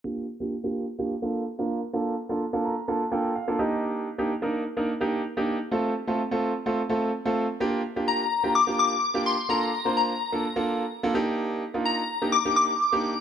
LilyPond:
<<
  \new Staff \with { instrumentName = "Synth bell" } { \time 4/4 \key g \minor \tempo 4 = 127 r1 | r1 | r1 | r1 |
r4 bes''4 d'''8 d'''4 c'''8 | bes''4 bes''4. r4. | r4 bes''4 d'''8 d'''4. | }
  \new Staff \with { instrumentName = "Grand piano" } { \time 4/4 \key g \minor << { r1 | r4. bes''8 a''8 g''8 f''8 ees''8 | r1 | r1 |
r1 | r1 | r1 | } \\ { <bes d' f' g'>8 r16 <bes d' f' g'>16 r16 <bes d' f' g'>8 r16 <bes d' f' g'>16 r16 <bes d' f' a'>8 r16 <bes d' f' bes'>8 r16 | <bes d' f' a'>8 r16 <bes d' f' a'>16 r16 <bes d' f' a'>8 r16 <bes d' f' a'>16 r16 <bes d' f' a'>8 r16 <bes d' f' a'>16 <bes d' ees' g'>8~ | <bes d' ees' g'>8 r16 <bes d' ees' g'>16 r16 <bes d' ees' bes'>8 r16 <bes d' ees' bes'>16 r16 <bes d' ees' g'>8 r16 <bes d' ees' g'>8 r16 | <a c' f' a'>8 r16 <a c' f' a'>16 r16 <a c' f' a'>8 r16 <a c' f' a'>16 r16 <a c' f' a'>8 r16 <a c' f' a'>8 r16 |
<bes d' f' g'>8 r16 <bes d' f' g'>8 r8 <bes d' f' g'>16 r16 <bes d' f' g'>8 r8 <bes d' f' g'>8 r16 | <bes d' f' a'>8 r16 <bes d' f' c''>8 r8 <bes d' f' a'>16 r16 <bes d' f' a'>8 r8 <bes d' f' a'>16 <bes d' ees' g'>8~ | <bes d' ees' g'>8 r16 <bes d' ees' f'>8 r8 <bes d' ees' g'>16 r16 <bes d' ees' g'>8 r8 <bes d' ees' g'>8 r16 | } >> }
>>